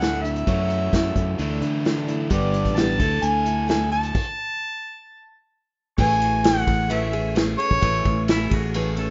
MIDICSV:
0, 0, Header, 1, 8, 480
1, 0, Start_track
1, 0, Key_signature, 3, "major"
1, 0, Tempo, 459418
1, 492, Time_signature, 4, 2, 24, 8
1, 9510, End_track
2, 0, Start_track
2, 0, Title_t, "Tonewheel organ"
2, 0, Program_c, 0, 16
2, 6234, Note_on_c, 0, 85, 77
2, 6238, Note_on_c, 0, 80, 59
2, 6242, Note_on_c, 0, 57, 73
2, 9510, Note_off_c, 0, 57, 0
2, 9510, Note_off_c, 0, 80, 0
2, 9510, Note_off_c, 0, 85, 0
2, 9510, End_track
3, 0, Start_track
3, 0, Title_t, "Harmonica"
3, 0, Program_c, 1, 22
3, 0, Note_on_c, 1, 78, 91
3, 227, Note_on_c, 1, 76, 93
3, 242, Note_off_c, 1, 78, 0
3, 1682, Note_off_c, 1, 76, 0
3, 2428, Note_on_c, 1, 74, 95
3, 2899, Note_on_c, 1, 81, 109
3, 2914, Note_off_c, 1, 74, 0
3, 3374, Note_on_c, 1, 80, 118
3, 3389, Note_off_c, 1, 81, 0
3, 3853, Note_off_c, 1, 80, 0
3, 3859, Note_on_c, 1, 80, 94
3, 4081, Note_off_c, 1, 80, 0
3, 4095, Note_on_c, 1, 81, 106
3, 5494, Note_off_c, 1, 81, 0
3, 6270, Note_on_c, 1, 80, 120
3, 6743, Note_on_c, 1, 78, 105
3, 6758, Note_off_c, 1, 80, 0
3, 7229, Note_on_c, 1, 76, 90
3, 7245, Note_off_c, 1, 78, 0
3, 7701, Note_off_c, 1, 76, 0
3, 7923, Note_on_c, 1, 73, 116
3, 8606, Note_off_c, 1, 73, 0
3, 9510, End_track
4, 0, Start_track
4, 0, Title_t, "Clean electric guitar"
4, 0, Program_c, 2, 27
4, 8672, Note_on_c, 2, 64, 94
4, 8895, Note_off_c, 2, 64, 0
4, 8920, Note_on_c, 2, 66, 84
4, 9372, Note_off_c, 2, 66, 0
4, 9393, Note_on_c, 2, 69, 87
4, 9510, Note_off_c, 2, 69, 0
4, 9510, End_track
5, 0, Start_track
5, 0, Title_t, "Steel-string acoustic guitar"
5, 0, Program_c, 3, 25
5, 10, Note_on_c, 3, 50, 63
5, 19, Note_on_c, 3, 57, 60
5, 24, Note_on_c, 3, 62, 65
5, 29, Note_on_c, 3, 64, 67
5, 242, Note_off_c, 3, 64, 0
5, 251, Note_off_c, 3, 50, 0
5, 252, Note_off_c, 3, 62, 0
5, 255, Note_on_c, 3, 64, 54
5, 256, Note_off_c, 3, 57, 0
5, 264, Note_on_c, 3, 62, 50
5, 272, Note_on_c, 3, 57, 42
5, 489, Note_off_c, 3, 57, 0
5, 494, Note_off_c, 3, 64, 0
5, 496, Note_on_c, 3, 54, 76
5, 499, Note_off_c, 3, 62, 0
5, 502, Note_on_c, 3, 57, 71
5, 504, Note_on_c, 3, 61, 84
5, 509, Note_on_c, 3, 64, 77
5, 955, Note_off_c, 3, 54, 0
5, 963, Note_off_c, 3, 57, 0
5, 968, Note_on_c, 3, 54, 68
5, 976, Note_on_c, 3, 57, 63
5, 977, Note_off_c, 3, 61, 0
5, 981, Note_off_c, 3, 64, 0
5, 989, Note_on_c, 3, 61, 66
5, 993, Note_on_c, 3, 64, 75
5, 1450, Note_off_c, 3, 57, 0
5, 1451, Note_off_c, 3, 54, 0
5, 1456, Note_on_c, 3, 50, 63
5, 1459, Note_off_c, 3, 61, 0
5, 1462, Note_on_c, 3, 57, 74
5, 1463, Note_on_c, 3, 62, 69
5, 1464, Note_off_c, 3, 64, 0
5, 1477, Note_on_c, 3, 64, 72
5, 1679, Note_off_c, 3, 64, 0
5, 1692, Note_off_c, 3, 62, 0
5, 1692, Note_on_c, 3, 64, 60
5, 1695, Note_off_c, 3, 50, 0
5, 1699, Note_off_c, 3, 57, 0
5, 1705, Note_on_c, 3, 62, 49
5, 1711, Note_on_c, 3, 57, 49
5, 1934, Note_off_c, 3, 64, 0
5, 1939, Note_off_c, 3, 57, 0
5, 1940, Note_off_c, 3, 62, 0
5, 1946, Note_on_c, 3, 50, 68
5, 1952, Note_on_c, 3, 57, 62
5, 1958, Note_on_c, 3, 62, 74
5, 1965, Note_on_c, 3, 64, 79
5, 2161, Note_off_c, 3, 64, 0
5, 2171, Note_off_c, 3, 62, 0
5, 2174, Note_on_c, 3, 64, 60
5, 2180, Note_off_c, 3, 57, 0
5, 2181, Note_off_c, 3, 50, 0
5, 2183, Note_on_c, 3, 62, 55
5, 2193, Note_on_c, 3, 57, 51
5, 2399, Note_off_c, 3, 62, 0
5, 2403, Note_on_c, 3, 43, 74
5, 2405, Note_on_c, 3, 50, 73
5, 2408, Note_off_c, 3, 57, 0
5, 2409, Note_on_c, 3, 55, 79
5, 2411, Note_on_c, 3, 62, 74
5, 2412, Note_on_c, 3, 59, 87
5, 2415, Note_off_c, 3, 64, 0
5, 2422, Note_on_c, 3, 67, 85
5, 2870, Note_off_c, 3, 55, 0
5, 2883, Note_off_c, 3, 59, 0
5, 2883, Note_on_c, 3, 55, 61
5, 2885, Note_off_c, 3, 62, 0
5, 2887, Note_off_c, 3, 67, 0
5, 2890, Note_off_c, 3, 43, 0
5, 2890, Note_off_c, 3, 50, 0
5, 2896, Note_on_c, 3, 59, 62
5, 2897, Note_on_c, 3, 62, 63
5, 2899, Note_on_c, 3, 67, 67
5, 3125, Note_off_c, 3, 67, 0
5, 3129, Note_off_c, 3, 55, 0
5, 3129, Note_on_c, 3, 69, 65
5, 3132, Note_off_c, 3, 59, 0
5, 3132, Note_off_c, 3, 62, 0
5, 3136, Note_on_c, 3, 57, 58
5, 3136, Note_on_c, 3, 64, 64
5, 3140, Note_on_c, 3, 50, 52
5, 3595, Note_off_c, 3, 69, 0
5, 3604, Note_off_c, 3, 64, 0
5, 3607, Note_on_c, 3, 69, 51
5, 3612, Note_off_c, 3, 57, 0
5, 3617, Note_on_c, 3, 64, 47
5, 3618, Note_off_c, 3, 50, 0
5, 3625, Note_on_c, 3, 57, 40
5, 3830, Note_off_c, 3, 57, 0
5, 3830, Note_on_c, 3, 50, 64
5, 3841, Note_off_c, 3, 64, 0
5, 3842, Note_on_c, 3, 57, 69
5, 3843, Note_off_c, 3, 69, 0
5, 3854, Note_on_c, 3, 64, 67
5, 3856, Note_on_c, 3, 69, 71
5, 4068, Note_off_c, 3, 69, 0
5, 4080, Note_off_c, 3, 64, 0
5, 4081, Note_on_c, 3, 69, 51
5, 4084, Note_off_c, 3, 50, 0
5, 4086, Note_off_c, 3, 57, 0
5, 4093, Note_on_c, 3, 64, 48
5, 4098, Note_on_c, 3, 57, 46
5, 4329, Note_off_c, 3, 69, 0
5, 4335, Note_off_c, 3, 64, 0
5, 4337, Note_off_c, 3, 57, 0
5, 6244, Note_on_c, 3, 45, 78
5, 6255, Note_on_c, 3, 52, 89
5, 6267, Note_on_c, 3, 57, 81
5, 6267, Note_on_c, 3, 61, 86
5, 6271, Note_on_c, 3, 68, 91
5, 7191, Note_off_c, 3, 45, 0
5, 7193, Note_off_c, 3, 52, 0
5, 7204, Note_off_c, 3, 61, 0
5, 7204, Note_on_c, 3, 45, 82
5, 7205, Note_off_c, 3, 57, 0
5, 7206, Note_on_c, 3, 52, 84
5, 7209, Note_off_c, 3, 68, 0
5, 7209, Note_on_c, 3, 57, 89
5, 7217, Note_on_c, 3, 61, 87
5, 7222, Note_on_c, 3, 68, 93
5, 7436, Note_off_c, 3, 68, 0
5, 7449, Note_off_c, 3, 45, 0
5, 7449, Note_off_c, 3, 61, 0
5, 7449, Note_on_c, 3, 68, 56
5, 7450, Note_off_c, 3, 52, 0
5, 7452, Note_off_c, 3, 57, 0
5, 7461, Note_on_c, 3, 61, 53
5, 7467, Note_on_c, 3, 57, 43
5, 7672, Note_off_c, 3, 57, 0
5, 7678, Note_off_c, 3, 61, 0
5, 7681, Note_on_c, 3, 52, 65
5, 7684, Note_off_c, 3, 68, 0
5, 7684, Note_on_c, 3, 57, 67
5, 7691, Note_on_c, 3, 61, 67
5, 7697, Note_on_c, 3, 68, 69
5, 7906, Note_off_c, 3, 68, 0
5, 7917, Note_off_c, 3, 61, 0
5, 7919, Note_on_c, 3, 68, 53
5, 7924, Note_off_c, 3, 57, 0
5, 7927, Note_off_c, 3, 52, 0
5, 7930, Note_on_c, 3, 61, 46
5, 7937, Note_on_c, 3, 57, 38
5, 8152, Note_off_c, 3, 57, 0
5, 8160, Note_off_c, 3, 61, 0
5, 8163, Note_on_c, 3, 45, 71
5, 8164, Note_on_c, 3, 57, 89
5, 8166, Note_off_c, 3, 68, 0
5, 8168, Note_on_c, 3, 52, 79
5, 8173, Note_on_c, 3, 61, 84
5, 8178, Note_on_c, 3, 68, 91
5, 8865, Note_off_c, 3, 68, 0
5, 8868, Note_off_c, 3, 61, 0
5, 8877, Note_on_c, 3, 68, 59
5, 8880, Note_on_c, 3, 61, 53
5, 8887, Note_off_c, 3, 45, 0
5, 8890, Note_off_c, 3, 52, 0
5, 8890, Note_off_c, 3, 57, 0
5, 8894, Note_on_c, 3, 57, 55
5, 9125, Note_off_c, 3, 68, 0
5, 9126, Note_off_c, 3, 61, 0
5, 9130, Note_off_c, 3, 57, 0
5, 9136, Note_on_c, 3, 45, 96
5, 9143, Note_on_c, 3, 52, 93
5, 9143, Note_on_c, 3, 57, 92
5, 9147, Note_on_c, 3, 61, 97
5, 9148, Note_on_c, 3, 68, 98
5, 9353, Note_off_c, 3, 68, 0
5, 9366, Note_on_c, 3, 68, 69
5, 9367, Note_off_c, 3, 61, 0
5, 9370, Note_off_c, 3, 57, 0
5, 9374, Note_off_c, 3, 45, 0
5, 9377, Note_off_c, 3, 52, 0
5, 9380, Note_on_c, 3, 61, 61
5, 9383, Note_on_c, 3, 57, 49
5, 9510, Note_off_c, 3, 57, 0
5, 9510, Note_off_c, 3, 61, 0
5, 9510, Note_off_c, 3, 68, 0
5, 9510, End_track
6, 0, Start_track
6, 0, Title_t, "Overdriven electric guitar"
6, 0, Program_c, 4, 29
6, 0, Note_on_c, 4, 50, 80
6, 0, Note_on_c, 4, 57, 85
6, 0, Note_on_c, 4, 62, 91
6, 0, Note_on_c, 4, 64, 98
6, 476, Note_off_c, 4, 50, 0
6, 484, Note_off_c, 4, 57, 0
6, 484, Note_on_c, 4, 42, 86
6, 489, Note_off_c, 4, 62, 0
6, 490, Note_on_c, 4, 49, 89
6, 495, Note_off_c, 4, 64, 0
6, 523, Note_on_c, 4, 66, 92
6, 1436, Note_off_c, 4, 42, 0
6, 1438, Note_off_c, 4, 49, 0
6, 1455, Note_off_c, 4, 66, 0
6, 1460, Note_on_c, 4, 52, 86
6, 2404, Note_off_c, 4, 52, 0
6, 9510, End_track
7, 0, Start_track
7, 0, Title_t, "Fingered electric bass"
7, 0, Program_c, 5, 33
7, 0, Note_on_c, 5, 38, 86
7, 457, Note_off_c, 5, 38, 0
7, 496, Note_on_c, 5, 42, 89
7, 939, Note_off_c, 5, 42, 0
7, 970, Note_on_c, 5, 42, 97
7, 1194, Note_off_c, 5, 42, 0
7, 1207, Note_on_c, 5, 42, 82
7, 1432, Note_off_c, 5, 42, 0
7, 1456, Note_on_c, 5, 38, 100
7, 1678, Note_off_c, 5, 38, 0
7, 1692, Note_on_c, 5, 50, 82
7, 2372, Note_off_c, 5, 50, 0
7, 2412, Note_on_c, 5, 31, 104
7, 2747, Note_off_c, 5, 31, 0
7, 2773, Note_on_c, 5, 33, 87
7, 3108, Note_off_c, 5, 33, 0
7, 3132, Note_on_c, 5, 38, 91
7, 3356, Note_off_c, 5, 38, 0
7, 3373, Note_on_c, 5, 38, 88
7, 4293, Note_off_c, 5, 38, 0
7, 6253, Note_on_c, 5, 33, 106
7, 6932, Note_off_c, 5, 33, 0
7, 6969, Note_on_c, 5, 33, 102
7, 7889, Note_off_c, 5, 33, 0
7, 8052, Note_on_c, 5, 33, 85
7, 8164, Note_off_c, 5, 33, 0
7, 8176, Note_on_c, 5, 33, 98
7, 8396, Note_off_c, 5, 33, 0
7, 8415, Note_on_c, 5, 33, 96
7, 8858, Note_off_c, 5, 33, 0
7, 8895, Note_on_c, 5, 33, 94
7, 9510, Note_off_c, 5, 33, 0
7, 9510, End_track
8, 0, Start_track
8, 0, Title_t, "Drums"
8, 13, Note_on_c, 9, 42, 60
8, 26, Note_on_c, 9, 38, 99
8, 118, Note_off_c, 9, 42, 0
8, 130, Note_off_c, 9, 38, 0
8, 259, Note_on_c, 9, 42, 64
8, 363, Note_off_c, 9, 42, 0
8, 375, Note_on_c, 9, 42, 60
8, 480, Note_off_c, 9, 42, 0
8, 490, Note_on_c, 9, 42, 61
8, 493, Note_on_c, 9, 36, 101
8, 595, Note_off_c, 9, 42, 0
8, 598, Note_off_c, 9, 36, 0
8, 730, Note_on_c, 9, 42, 57
8, 834, Note_off_c, 9, 42, 0
8, 971, Note_on_c, 9, 42, 62
8, 972, Note_on_c, 9, 36, 82
8, 983, Note_on_c, 9, 38, 110
8, 1075, Note_off_c, 9, 42, 0
8, 1076, Note_off_c, 9, 36, 0
8, 1088, Note_off_c, 9, 38, 0
8, 1209, Note_on_c, 9, 42, 66
8, 1210, Note_on_c, 9, 36, 82
8, 1314, Note_off_c, 9, 36, 0
8, 1314, Note_off_c, 9, 42, 0
8, 1450, Note_on_c, 9, 42, 61
8, 1555, Note_off_c, 9, 42, 0
8, 1692, Note_on_c, 9, 42, 63
8, 1797, Note_off_c, 9, 42, 0
8, 1934, Note_on_c, 9, 42, 62
8, 1946, Note_on_c, 9, 38, 99
8, 2038, Note_off_c, 9, 42, 0
8, 2051, Note_off_c, 9, 38, 0
8, 2174, Note_on_c, 9, 42, 73
8, 2278, Note_off_c, 9, 42, 0
8, 2406, Note_on_c, 9, 42, 70
8, 2411, Note_on_c, 9, 36, 104
8, 2510, Note_off_c, 9, 42, 0
8, 2515, Note_off_c, 9, 36, 0
8, 2651, Note_on_c, 9, 42, 65
8, 2756, Note_off_c, 9, 42, 0
8, 2772, Note_on_c, 9, 36, 77
8, 2772, Note_on_c, 9, 42, 67
8, 2877, Note_off_c, 9, 36, 0
8, 2877, Note_off_c, 9, 42, 0
8, 2890, Note_on_c, 9, 42, 70
8, 2903, Note_on_c, 9, 38, 104
8, 2995, Note_off_c, 9, 42, 0
8, 3007, Note_off_c, 9, 38, 0
8, 3131, Note_on_c, 9, 42, 71
8, 3132, Note_on_c, 9, 36, 95
8, 3235, Note_off_c, 9, 42, 0
8, 3236, Note_off_c, 9, 36, 0
8, 3367, Note_on_c, 9, 42, 68
8, 3472, Note_off_c, 9, 42, 0
8, 3612, Note_on_c, 9, 42, 63
8, 3716, Note_off_c, 9, 42, 0
8, 3852, Note_on_c, 9, 42, 67
8, 3865, Note_on_c, 9, 38, 102
8, 3957, Note_off_c, 9, 42, 0
8, 3969, Note_off_c, 9, 38, 0
8, 4093, Note_on_c, 9, 42, 65
8, 4197, Note_off_c, 9, 42, 0
8, 4212, Note_on_c, 9, 42, 62
8, 4316, Note_off_c, 9, 42, 0
8, 4335, Note_on_c, 9, 36, 107
8, 4335, Note_on_c, 9, 49, 91
8, 4439, Note_off_c, 9, 36, 0
8, 4439, Note_off_c, 9, 49, 0
8, 6252, Note_on_c, 9, 36, 105
8, 6255, Note_on_c, 9, 49, 120
8, 6356, Note_off_c, 9, 36, 0
8, 6359, Note_off_c, 9, 49, 0
8, 6495, Note_on_c, 9, 51, 81
8, 6599, Note_off_c, 9, 51, 0
8, 6731, Note_on_c, 9, 51, 112
8, 6743, Note_on_c, 9, 38, 121
8, 6835, Note_off_c, 9, 51, 0
8, 6848, Note_off_c, 9, 38, 0
8, 6973, Note_on_c, 9, 36, 87
8, 6973, Note_on_c, 9, 51, 79
8, 7077, Note_off_c, 9, 36, 0
8, 7078, Note_off_c, 9, 51, 0
8, 7217, Note_on_c, 9, 51, 103
8, 7322, Note_off_c, 9, 51, 0
8, 7451, Note_on_c, 9, 51, 75
8, 7555, Note_off_c, 9, 51, 0
8, 7690, Note_on_c, 9, 51, 102
8, 7702, Note_on_c, 9, 38, 109
8, 7794, Note_off_c, 9, 51, 0
8, 7807, Note_off_c, 9, 38, 0
8, 7937, Note_on_c, 9, 51, 78
8, 8041, Note_off_c, 9, 51, 0
8, 8055, Note_on_c, 9, 36, 88
8, 8159, Note_off_c, 9, 36, 0
8, 8175, Note_on_c, 9, 51, 100
8, 8176, Note_on_c, 9, 36, 99
8, 8280, Note_off_c, 9, 36, 0
8, 8280, Note_off_c, 9, 51, 0
8, 8414, Note_on_c, 9, 51, 78
8, 8415, Note_on_c, 9, 36, 92
8, 8519, Note_off_c, 9, 36, 0
8, 8519, Note_off_c, 9, 51, 0
8, 8652, Note_on_c, 9, 51, 109
8, 8664, Note_on_c, 9, 38, 116
8, 8756, Note_off_c, 9, 51, 0
8, 8769, Note_off_c, 9, 38, 0
8, 8894, Note_on_c, 9, 51, 80
8, 8896, Note_on_c, 9, 36, 90
8, 8998, Note_off_c, 9, 51, 0
8, 9000, Note_off_c, 9, 36, 0
8, 9133, Note_on_c, 9, 51, 102
8, 9238, Note_off_c, 9, 51, 0
8, 9370, Note_on_c, 9, 51, 77
8, 9475, Note_off_c, 9, 51, 0
8, 9510, End_track
0, 0, End_of_file